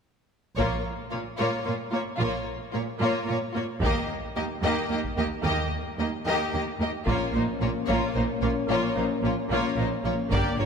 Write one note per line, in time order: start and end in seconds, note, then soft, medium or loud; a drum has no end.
0.56 0.84 A#1 soft
0.56 0.67 A#2 soft
0.56 0.84 A#3 soft
0.56 0.84 F4 soft
0.56 0.83 C#5 soft
0.56 taiko soft
1.11 1.22 A#2 soft
1.11 1.20 A#3 soft
1.11 1.20 F4 soft
1.11 1.19 C#5 soft
1.38 1.48 A#2 soft
1.38 1.64 A#3 soft
1.38 1.64 F4 soft
1.38 1.64 C#5 soft
1.65 1.75 A#2 soft
1.65 1.73 A#3 soft
1.65 1.74 F4 soft
1.65 1.73 C#5 soft
1.92 2.01 A#2 soft
1.92 2.01 A#3 soft
1.92 2.00 F4 soft
1.92 2.01 C#5 soft
2.18 2.46 A#1 soft
2.18 2.29 A#2 soft
2.18 2.46 A#3 soft
2.18 2.45 F4 soft
2.18 2.46 C#5 soft
2.73 2.83 A#2 soft
2.73 2.81 A#3 soft
2.73 2.81 F4 soft
2.73 2.82 C#5 soft
3.00 3.09 A#2 soft
3.00 3.26 A#3 soft
3.00 3.25 F4 soft
3.00 3.27 C#5 soft
3.27 3.37 A#2 soft
3.27 3.35 A#3 soft
3.27 3.35 F4 soft
3.27 3.37 C#5 soft
3.54 3.63 A#2 soft
3.54 3.63 A#3 soft
3.54 3.62 F4 soft
3.54 3.64 C#5 soft
3.81 3.89 D#2 soft
3.81 4.08 D#2 soft
3.81 4.07 A#3 soft
3.81 4.08 G4 soft
3.81 4.09 D#5 soft
3.81 taiko soft
4.36 4.44 D#2 soft
4.36 4.44 A#3 soft
4.36 4.45 G4 soft
4.36 4.44 D#5 soft
4.63 4.71 D#2 soft
4.63 4.89 A#3 soft
4.63 4.89 G4 soft
4.63 4.89 D#5 soft
4.90 4.98 D#2 soft
4.90 4.99 A#3 soft
4.90 4.99 G4 soft
4.90 5.00 D#5 soft
5.04 taiko soft
5.18 5.26 D#2 soft
5.18 5.26 A#3 soft
5.18 5.27 G4 soft
5.18 5.26 D#5 soft
5.45 5.53 D#2 soft
5.45 5.70 D#2 soft
5.45 5.70 A#3 soft
5.45 5.71 G4 soft
5.45 5.70 D#5 soft
5.99 6.07 D#2 soft
5.99 6.07 A#3 soft
5.99 6.08 G4 soft
5.99 6.07 D#5 soft
6.26 6.34 D#2 soft
6.26 6.52 A#3 soft
6.26 6.53 G4 soft
6.26 6.51 D#5 soft
6.53 6.62 D#2 soft
6.53 6.61 A#3 soft
6.53 6.64 G4 soft
6.53 6.62 D#5 soft
6.81 6.89 D#2 soft
6.81 6.89 A#3 soft
6.81 6.90 G4 soft
6.81 6.89 D#5 soft
7.07 7.15 A#1 soft
7.07 7.16 A#2 soft
7.07 7.32 A#3 soft
7.07 10.29 A#3 soft
7.07 10.29 C#4 soft
7.07 7.33 F4 soft
7.07 7.33 C#5 soft
7.07 taiko soft
7.33 7.43 A#1 soft
7.33 7.43 A#2 soft
7.33 7.42 A#3 soft
7.33 7.44 D#4 soft
7.33 7.41 C5 soft
7.61 7.70 A#1 soft
7.61 7.70 A#2 soft
7.61 7.70 A#3 soft
7.61 7.70 F4 soft
7.61 7.69 C#5 soft
7.86 7.97 A#1 soft
7.86 7.97 A#2 soft
7.86 8.14 A#3 soft
7.86 8.15 F4 soft
7.86 8.13 C#5 soft
8.14 8.23 A#1 soft
8.14 8.25 A#2 soft
8.14 8.24 A#3 soft
8.14 8.24 D#4 soft
8.14 8.22 C5 soft
8.41 8.50 A#1 soft
8.41 8.51 A#2 soft
8.41 8.50 A#3 soft
8.41 8.51 F4 soft
8.41 8.49 C#5 soft
8.69 8.77 A#1 soft
8.69 8.78 A#2 soft
8.69 8.95 A#3 soft
8.69 8.95 F4 soft
8.69 8.95 C#5 soft
8.96 9.04 A#1 soft
8.96 9.04 A#2 soft
8.96 9.05 A#3 soft
8.96 9.04 D#4 soft
8.96 9.05 C5 soft
9.23 9.31 A#1 soft
9.23 9.31 A#2 soft
9.23 9.31 A#3 soft
9.23 9.33 F4 soft
9.23 9.33 C#5 soft
9.50 9.58 A#1 soft
9.50 9.58 A#2 soft
9.50 9.76 A#3 soft
9.50 9.76 F4 soft
9.50 9.77 C#5 soft
9.77 9.86 A#1 soft
9.77 9.85 A#2 soft
9.77 9.85 A#3 soft
9.77 9.86 D#4 soft
9.77 9.88 C5 soft
10.04 10.12 A#1 soft
10.04 10.13 A#2 soft
10.04 10.13 A#3 soft
10.04 10.14 F4 soft
10.04 10.13 C#5 soft
10.31 10.39 G1 soft
10.31 10.40 G2 soft
10.31 10.57 A#3 soft
10.31 10.65 A#3 soft
10.31 10.65 D4 soft
10.31 10.58 G4 soft
10.31 10.57 D5 soft
10.31 taiko soft
10.58 10.65 G1 soft
10.58 10.65 G2 soft
10.58 10.65 A#3 soft
10.58 10.65 F4 soft
10.58 10.65 C#5 soft